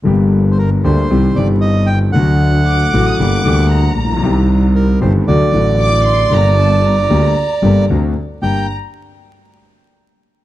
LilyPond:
<<
  \new Staff \with { instrumentName = "Violin section" } { \time 4/4 \key g \minor \tempo 4 = 115 r1 | r4 d'''8. ees'''16 d'''4 bes''4~ | bes''8. r2 r16 d'''8 c'''8 | bes''8 a''8 bes''2 r4 |
bes''8 r2. r8 | }
  \new Staff \with { instrumentName = "Bandoneon" } { \time 4/4 \key g \minor r8. r32 c''32 bes'8 c''4 d''8 ees''8 g''8 | fis''2.~ fis''8 r8 | r4 bes'8 c''8 d''2~ | d''2. r4 |
g''8 r2. r8 | }
  \new Staff \with { instrumentName = "Grand piano" } { \clef bass \time 4/4 \key g \minor << { <g,, g, d g bes g'>4. <d, d g bes g'>8 <c, c ees g c' g'>8 <g,, g, ees g c' g'>4. | <d, d fis a fis'>4. <a,, a, d fis a fis'>8 <g,, g, d g bes g'>8 <d, d g bes g'>4. | <c, c ees g c' g'>4. <g,, g, ees g c' g'>8 <d, d fis a fis'>8 <a,, a, d fis a fis'>4. | <g,, g, d g bes g'>4. <d, d g bes g'>8 r8 <g,, g, d g bes g'>8 <d, d a c' fis'>8 r8 |
<g, bes d' g'>8 r2. r8 | } \\ { r1 | r2. r8 r32 a,,32 bes,,32 b,,32 | r1 | r1 |
r1 | } >> }
  \new Staff \with { instrumentName = "Double bass" } { \clef bass \time 4/4 \key g \minor g,,4. d,8 c,8 g,,4. | d,4. a,,8 g,,8 d,4 bes,,8 | c,4. g,,8 d,8 a,,4. | g,,4. d,8 r8 g,,8 d,8 r8 |
g,,8 r2. r8 | }
>>